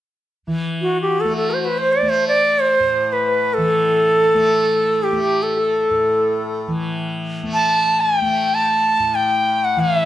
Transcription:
0.47 3.57 E3 soft
0.81 1.00 F#4 medium
0.96 1.67 F#4 soft
1.02 1.22 G4 medium
1.20 1.36 A4 medium
1.25 2.02 A3 soft
1.36 1.52 A4 medium
1.51 1.61 C5 medium
1.61 1.80 B4 medium
1.61 1.66 C5 soft
1.61 2.22 C5 medium
1.78 1.94 C5 medium
1.92 2.11 D5 medium
2.02 4.35 A3 soft
2.09 2.27 C5 medium
2.23 2.42 C5 soft
2.28 2.61 D5 medium
2.42 2.74 D5 medium
2.60 3.14 C5 medium
2.73 3.28 C5 medium
2.80 5.90 A2 soft
3.13 3.55 B4 medium
3.27 3.68 B4 medium
3.54 6.67 E3 soft
3.54 5.05 A4 medium
3.67 5.20 A4 medium
4.35 5.12 A3 soft
5.03 5.44 G4 medium
5.12 7.43 A3 soft
5.17 5.58 G4 soft
5.43 6.61 A4 medium
5.57 6.71 A4 soft
5.90 8.99 A2 soft
6.67 9.76 E3 soft
7.43 8.22 A3 soft
7.54 8.02 A5 medium
7.68 8.16 A5 medium
8.01 8.20 G#5 medium
8.15 8.70 G5 medium
8.20 10.05 A3 soft
8.20 8.56 G5 medium
8.54 9.16 A5 medium
8.68 9.31 A5 medium
8.99 10.05 A2 soft
9.15 9.66 G5 medium
9.29 9.81 G5 medium
9.64 9.81 F#5 medium
9.76 10.05 E3 medium
9.76 9.99 F5 medium
9.85 9.94 F#5 soft
9.94 10.05 E5 medium
9.99 10.05 E5 medium

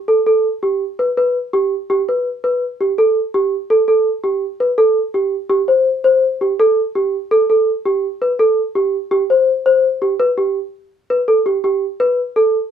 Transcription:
0.08 0.18 A4 medium
0.26 0.46 A4 medium
0.63 0.82 G4 medium
0.99 1.09 B4 medium
1.17 1.37 B4 medium
1.53 1.73 G4 medium
1.90 1.99 G4 medium
2.09 2.28 B4 medium
2.44 2.63 B4 medium
2.81 2.90 G4 medium
2.98 3.17 A4 medium
3.34 3.53 G4 medium
3.70 3.80 A4 medium
3.88 4.07 A4 medium
4.24 4.43 G4 medium
4.60 4.70 B4 medium
4.78 4.97 A4 medium
5.14 5.34 G4 medium
5.50 5.60 G4 medium
5.68 5.88 C5 medium
6.04 6.24 C5 medium
6.41 6.51 G4 medium
6.60 6.79 A4 medium
6.95 7.15 G4 medium
7.31 7.41 A4 medium
7.50 7.69 A4 medium
7.86 8.05 G4 medium
8.22 8.31 B4 medium
8.39 8.59 A4 medium
8.75 8.95 G4 medium
9.11 9.21 G4 medium
9.30 9.49 C5 medium
9.66 9.85 C5 medium
10.02 10.12 G4 medium
10.20 10.29 B4 medium
10.38 10.57 G4 medium
11.10 11.20 B4 medium
11.28 11.38 A4 medium
11.46 11.56 G4 medium
11.64 11.84 G4 medium
12.00 12.19 B4 medium
12.36 12.56 A4 medium

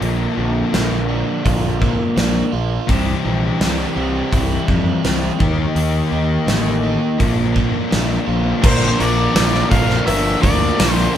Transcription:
0.00 0.26 A#1 medium
0.00 2.50 A#2 medium
0.00 1.81 A#2 medium
0.00 2.51 D3 medium
0.00 2.51 A#3 medium
0.00 2.52 D4 medium
0.00 2.52 F4 medium
0.00 open hi-hat soft
0.37 0.62 A#1 medium
0.37 2.17 D3 medium
0.73 1.22 A#1 medium
0.73 1.79 A#3 medium
0.73 snare medium
0.73 open hi-hat soft
1.08 2.15 D4 medium
1.45 1.94 A#1 medium
1.45 2.51 F4 medium
1.45 kick medium
1.45 open hi-hat soft
1.80 2.89 A#3 medium
1.80 kick medium
2.16 2.41 A#1 medium
2.16 2.88 D4 medium
2.16 snare medium
2.16 open hi-hat soft
2.52 2.77 A#1 medium
2.52 2.89 F4 medium
2.87 3.13 C2 medium
2.87 5.37 C3 medium
2.87 5.38 E3 medium
2.87 5.38 G3 medium
2.87 5.38 C4 medium
2.87 5.38 G4 medium
2.87 kick medium
2.87 open hi-hat soft
3.25 3.50 A#1 medium
3.25 5.04 E3 medium
3.60 3.85 C2 medium
3.60 4.67 G3 medium
3.60 snare loud
3.60 open hi-hat soft
3.96 4.21 C2 medium
3.96 5.03 C4 medium
4.32 4.57 C2 medium
4.32 5.40 E4 medium
4.32 kick medium
4.32 open hi-hat soft
4.68 4.93 F2 medium
4.68 5.40 G3 medium
4.68 kick medium
5.04 5.29 C2 medium
5.04 5.40 C4 medium
5.04 snare medium
5.04 open hi-hat soft
5.39 5.65 D#2 medium
5.39 7.17 D#3 medium
5.39 7.18 A#3 medium
5.39 7.18 D#4 medium
5.39 7.18 G4 medium
5.39 kick medium
5.75 6.00 D#2 medium
5.75 6.11 D#3 medium
5.75 open hi-hat soft
6.12 6.36 D#2 medium
6.12 7.20 D#3 medium
6.47 6.96 A1 medium
6.47 7.20 A#3 medium
6.47 snare loud
6.47 open hi-hat soft
6.83 7.20 D#4 medium
7.18 7.69 A#1 medium
7.18 8.61 A#2 medium
7.18 8.61 D3 medium
7.18 8.61 A#3 medium
7.18 8.62 D4 medium
7.18 8.62 F4 medium
7.18 kick medium
7.18 open hi-hat soft
7.54 8.62 A#3 medium
7.54 kick medium
7.90 8.17 A#1 medium
7.90 8.62 D4 medium
7.90 snare medium
7.90 open hi-hat soft
8.26 8.52 A#1 medium
8.26 8.62 F4 medium
8.34 8.58 B3 medium
8.34 8.59 C4 medium
8.41 8.61 D4 medium
8.41 8.62 E4 medium
8.46 8.63 F4 medium
8.46 8.65 G4 medium
8.51 8.66 A4 medium
8.51 8.67 B4 medium
8.57 8.69 C5 medium
8.57 8.70 D5 medium
8.62 8.91 A#1 medium
8.62 8.97 A#2 medium
8.62 8.97 D3 medium
8.62 8.98 F3 loud
8.62 11.17 F3 medium
8.62 8.98 A#3 loud
8.62 8.99 D4 loud
8.62 11.17 D4 medium
8.62 9.01 F4 loud
8.62 8.99 A#4 loud
8.62 11.17 A#4 medium
8.62 8.72 E5 medium
8.62 kick loud
8.62 crash loud
8.62 cowbell medium
8.66 9.02 C5 medium
8.97 9.27 A#1 medium
8.97 9.33 A#2 medium
8.97 9.33 D3 medium
8.97 9.34 F3 medium
8.97 9.34 A#3 medium
8.97 9.35 D4 medium
8.97 9.36 F4 medium
8.97 9.35 A#4 medium
8.97 9.70 D5 medium
8.97 open hi-hat medium
9.34 9.62 A#1 medium
9.34 9.69 A#2 medium
9.34 9.69 D3 medium
9.34 9.70 F3 medium
9.34 9.70 A#3 medium
9.34 9.70 D4 loud
9.34 9.71 F4 medium
9.34 9.71 A#4 medium
9.34 snare loud
9.34 open hi-hat medium
9.34 cowbell medium
9.54 snare soft
9.70 9.98 A#1 medium
9.70 10.04 A#2 loud
9.70 10.04 D3 medium
9.70 10.04 F3 medium
9.70 10.05 A#3 loud
9.70 10.05 D4 loud
9.70 10.08 F4 loud
9.70 10.06 A#4 loud
9.70 10.06 F5 medium
9.70 kick medium
9.70 open hi-hat medium
9.90 snare soft
10.05 10.34 G1 medium
10.05 10.39 A#2 medium
10.05 10.40 D3 medium
10.05 10.40 F3 medium
10.05 10.41 A#3 medium
10.05 10.41 D4 medium
10.05 10.42 F4 medium
10.05 10.42 A#4 medium
10.05 10.41 E5 medium
10.05 open hi-hat medium
10.05 cowbell loud
10.41 10.70 D2 medium
10.41 10.76 A#2 medium
10.41 10.76 D3 medium
10.41 10.77 F3 medium
10.41 10.78 A#3 medium
10.41 10.77 D4 medium
10.41 10.79 F4 medium
10.41 10.78 A#4 medium
10.41 10.93 D5 medium
10.41 kick medium
10.41 open hi-hat medium
10.77 11.06 A#1 medium
10.77 11.13 A#2 medium
10.77 11.13 D3 medium
10.77 11.13 F3 medium
10.77 11.14 A#3 medium
10.77 11.14 D4 loud
10.77 11.14 F4 loud
10.77 11.15 A#4 loud
10.77 snare loud
10.77 open hi-hat medium
10.77 cowbell medium
10.93 11.10 C5 medium
11.14 11.17 A#2 medium
11.14 11.17 D3 medium

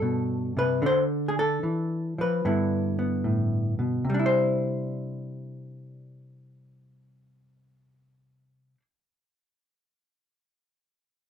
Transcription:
0.00 0.81 G2 medium
0.00 0.56 B2 medium
0.00 0.60 D4 medium
0.00 0.58 A4 medium
0.57 0.83 C3 medium
0.57 0.84 B4 medium
0.82 1.63 D3 medium
0.82 2.40 D4 soft
0.86 1.02 C5 medium
1.28 1.38 G#4 medium
1.39 2.18 A4 medium
1.63 2.18 E3 medium
2.18 2.44 F3 medium
2.18 4.05 B4 medium
2.45 4.01 G2 medium
2.45 4.09 D3 soft
2.45 2.98 B3 soft
2.45 4.02 E4 soft
2.99 4.01 B3 soft
3.24 3.78 A2 medium
3.79 4.04 B2 medium
4.05 8.75 C3 medium
4.10 8.77 G3 medium
4.14 8.80 D4 medium
4.19 8.82 E4 medium
4.26 8.81 C5 medium

